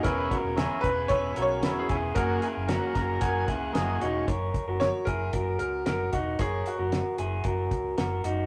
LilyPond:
<<
  \new Staff \with { instrumentName = "Upright piano" } { \time 4/4 \key fis \mixolydian \tempo 4 = 113 ais'4. b'8 \tuplet 3/2 { cis''4 cis''8~ cis''8 gis'4 } | ais'2. r4 | r4 cis''8 ais'4 ais'8 ais'8 fis'8 | gis'8 fis'2 r4. | }
  \new Staff \with { instrumentName = "Clean electric guitar" } { \time 4/4 \key fis \mixolydian <gis' b'>8 <fis' ais'>8 <e' gis'>8 <gis' b'>8 <gis' b'>8 <fis' ais'>4 <e' gis'>8 | <fis' ais'>8 <e' gis'>8 <cis' fis'>8 <fis' ais'>8 <fis' ais'>8 <e' gis'>4 <dis' fis'>8 | <ais' cis''>8. <fis' ais'>8. <e' gis'>8 <fis' ais'>4 <fis' ais'>8 <dis' fis'>8 | <ais' cis''>8. <fis' ais'>8. <e' gis'>8 <fis' ais'>4 <fis' ais'>8 <dis' fis'>8 | }
  \new Staff \with { instrumentName = "Transistor combo organ" } { \time 4/4 \key fis \mixolydian <b cis' e'>8 r8 <cis' e' ais'>8 r8 <cis' e' b'>8 r8 <cis' e' b'>8 r8 | <ais fis' gis'>8 r8 <ais fis' ais'>8 ais''8 <ais fis' gis' gis''>8 fis''8 <ais fis' gis' dis''>8 cis''8 | r1 | r1 | }
  \new Staff \with { instrumentName = "Overdriven electric guitar" } { \time 4/4 \key fis \mixolydian <e b cis' gis'>8 <b cis' gis'>8 <e b cis' gis'>8 <b cis' gis'>8 <e b cis' gis'>8 <b cis' gis'>8 <e b cis' gis'>8 <b cis' gis'>8 | <fis ais cis' gis'>8 <ais cis' gis'>8 <fis ais cis' gis'>8 <ais cis' gis'>8 <fis ais cis' gis'>8 <ais cis' gis'>8 <fis ais cis' gis'>8 <ais cis' gis'>8 | r1 | r1 | }
  \new Staff \with { instrumentName = "Fingered electric bass" } { \clef bass \time 4/4 \key fis \mixolydian e,,8 r16 e,,8 r16 e,,8 e,,8 b,,8 e,,8 e,,8 | fis,,8 r16 fis,,8 r16 fis,,8 fis,,8 cis,8 fis,,8 e,,8 | fis,,8 r16 fis,,8 r16 fis,,8 fis,,8 cis,8 fis,,8 e,,8 | fis,,8 r16 fis,,8 r16 fis,,8 fis,,8 cis,8 fis,,8 fis,,8 | }
  \new DrumStaff \with { instrumentName = "Drums" } \drummode { \time 4/4 <hh bd>8 <hh bd>8 <hh sn>8 <hh bd>8 <hh bd>8 hh8 <hh sn>8 <hh bd>8 | <hh bd>8 hh8 <hh sn>8 <hh bd sn>8 <hh bd>8 <hh bd>8 <hh sn>8 hh8 | <hh bd>8 <hh bd>8 <hh sn>8 <hh bd>8 <hh bd>8 hh8 <hh sn>8 <hh bd>8 | <hh bd>8 hh8 <hh sn>8 hh8 <hh bd>8 <hh bd>8 <hh sn>8 hh8 | }
>>